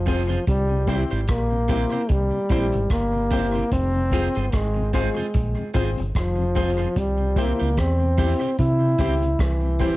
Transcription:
Already playing: fingered electric bass F1, trombone F3
0.06 tonewheel organ G#3 C4 F4, clean electric guitar C4 F4 G#4 C5, grand piano C4 F4 G#4 C5, kick, open hi-hat
0.29 tonewheel organ F2 C3, clean electric guitar C4 F4 G#4 C5, closed hi-hat
0.47 fingered electric bass C2, trombone G3, kick, closed hi-hat
0.71 tonewheel organ C3
0.87 tonewheel organ G3 C4 E4, clean electric guitar C4 E4 G4 C5, grand piano C4 E4 G4 C5, kick, closed hi-hat
1.10 fingered electric bass G#1, clean electric guitar C4 E4 G4 C5, closed hi-hat
1.27 fingered electric bass A#1, trombone A#3, kick, cross-stick, closed hi-hat
1.52 tonewheel organ C3
1.68 tonewheel organ G3 C4 E4, clean electric guitar C4 E4 G4 C5, grand piano C4 E4 G4 C5, kick, closed hi-hat
1.91 tonewheel organ C3, clean electric guitar C4 E4 G4 C5, closed hi-hat
2.09 fingered electric bass C2, trombone G3, kick, closed hi-hat
2.33 tonewheel organ C3
2.49 fingered electric bass A#1, tonewheel organ G3 C4 E4, clean electric guitar C4 E4 G4 C5, grand piano C4 E4 G4 C5, kick, closed hi-hat
2.72 fingered electric bass G#1, tonewheel organ C3, closed hi-hat
2.89 fingered electric bass G1, trombone A#3, kick, cross-stick, closed hi-hat
3.14 tonewheel organ C3
3.31 tonewheel organ G3 C4 E4, clean electric guitar C4 E4 G4 C5, grand piano C4 E4 G4 C5, kick, open hi-hat
3.54 tonewheel organ C3, clean electric guitar C4 E4 G4 C5, closed hi-hat
3.71 fingered electric bass F1, trombone C4, kick, closed hi-hat
3.96 tonewheel organ F2 C3
4.11 tonewheel organ G#3 C4 F4, grand piano C4 F4 G#4 C5, clean electric guitar C4 F4 G#4 C5, kick, closed hi-hat
4.35 fingered electric bass G1, clean electric guitar C4 F4 G#4 C5, closed hi-hat
4.52 fingered electric bass G#1, trombone G#3, kick, cross-stick, closed hi-hat
4.76 tonewheel organ F2 C3
4.93 tonewheel organ G#3 C4 F4, trombone G#3, clean electric guitar C4 F4 G#4 C5, grand piano C4 F4 G#4 C5, kick, cross-stick, closed hi-hat
5.16 tonewheel organ F2 C3, clean electric guitar C4 F4 G#4 C5, closed hi-hat
5.34 fingered electric bass A#1, kick, closed hi-hat
5.58 tonewheel organ F2 C3
5.74 fingered electric bass G#1, tonewheel organ G#3 C4 F4, clean electric guitar C4 F4 G#4 C5, grand piano C4 F4 G#4 C5, kick, closed hi-hat
5.97 fingered electric bass G1, tonewheel organ F2 C3, closed hi-hat
6.15 fingered electric bass F1, trombone F3, kick, cross-stick, closed hi-hat
6.38 tonewheel organ F2 C3
6.55 tonewheel organ G#3 C4 F4, clean electric guitar C4 F4 G#4 C5, grand piano C4 F4 G#4 C5, kick, open hi-hat
6.78 tonewheel organ F2 C3, clean electric guitar C4 F4 G#4 C5, closed hi-hat
6.96 fingered electric bass C2, trombone G3, kick, closed hi-hat
7.20 tonewheel organ C3
7.36 tonewheel organ G3 C4 E4, trombone A#3, clean electric guitar C4 E4 G4 C5, grand piano C4 E4 G4 C5, kick, closed hi-hat
7.59 fingered electric bass C#2, clean electric guitar C4 E4 G4 C5, closed hi-hat
7.77 fingered electric bass E2, trombone C4, kick, cross-stick, closed hi-hat
8.01 tonewheel organ C3
8.18 tonewheel organ G3 C4 E4, clean electric guitar C4 E4 G4 C5, grand piano C4 E4 G4 C5, kick, open hi-hat
8.41 tonewheel organ C3, clean electric guitar C4 E4 G4 C5, closed hi-hat
8.58 fingered electric bass C3, trombone E4, kick, closed hi-hat
8.81 tonewheel organ C3
8.99 fingered electric bass C#2, tonewheel organ G3 C4 E4, clean electric guitar C4 E4 G4 C5, grand piano C4 E4 G4 C5, kick, open hi-hat
9.22 tonewheel organ C3, closed hi-hat
9.39 fingered electric bass C2, trombone E3, kick, cross-stick, closed hi-hat
9.63 tonewheel organ C3
9.80 fingered electric bass E1, tonewheel organ G3 C4 E4, clean electric guitar C4 E4 G4 C5, grand piano C4 E4 G4 C5, kick, open hi-hat

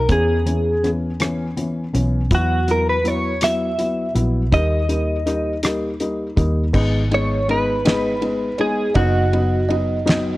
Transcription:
Already playing: clean electric guitar A#4
0.08 fingered electric bass E2, felt piano E3 B3 C#4, clean electric guitar G#4, kick, closed hi-hat
0.46 felt piano E3 B3 C#4, closed hi-hat
0.83 felt piano E3 B3 C#4, cross-stick, closed hi-hat
1.20 felt piano E3 B3 C#4, cross-stick, closed hi-hat
1.57 felt piano E3 B3 C#4, closed hi-hat
1.93 fingered electric bass B1, felt piano E3 B3 C#4, closed hi-hat
2.31 fingered electric bass E2, felt piano F#3 B3 E4, kick, closed hi-hat
2.35 clean electric guitar F#4
2.68 felt piano F#3 B3 E4, clean electric guitar A#4, closed hi-hat
2.90 clean electric guitar B4
3.04 felt piano F#3 B3 E4, clean electric guitar C#5, closed hi-hat
3.41 felt piano F#3 B3 E4, clean electric guitar E5, cross-stick, closed hi-hat
3.78 felt piano F#3 B3 E4, closed hi-hat
4.15 fingered electric bass A#1, felt piano F#3 B3 E4, closed hi-hat
4.52 fingered electric bass D#2, felt piano G3 A#3 D#4, clean electric guitar D#5, kick, closed hi-hat
4.89 felt piano G3 A#3 D#4, closed hi-hat
5.26 felt piano G3 A#3 D#4, cross-stick, closed hi-hat
5.63 felt piano G3 A#3 D#4, cross-stick, closed hi-hat
6.00 felt piano G3 A#3 D#4, closed hi-hat
6.37 fingered electric bass D#2, felt piano G3 A#3 D#4, kick, closed hi-hat
6.73 fingered electric bass G#1, felt piano G#3 B3 D#4, kalimba B4, kick, crash
7.11 felt piano G#3 B3 D#4, clean electric guitar C#5, ride
7.48 felt piano G#3 B3 D#4, clean electric guitar B4, ride
7.85 felt piano G#3 B3 D#4, snare, ride
8.21 felt piano G#3 B3 D#4, ride
8.58 felt piano G#3 B3 D#4, clean electric guitar G#4, kalimba C#5, ride
8.95 fingered electric bass F#1, felt piano F#3 B3 D#4, clean electric guitar F#4, kalimba D#5, kick, ride
9.33 felt piano F#3 B3 D#4, ride
9.68 felt piano F#3 B3 D#4, kalimba D#5, ride
10.05 felt piano F#3 B3 D#4, snare, ride

